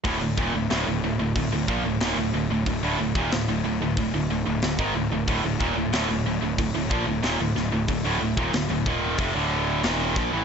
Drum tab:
HH |o---o---o---o---|o---o---o---o---|o---o---o---o---|o---o---o---o---|
SD |----o-------o---|----o-------o---|----o-------o-o-|----o-------o-o-|
BD |o-o-----o-o-----|o--o----o----o--|o-o-----o-o-----|o--o--o-o-----o-|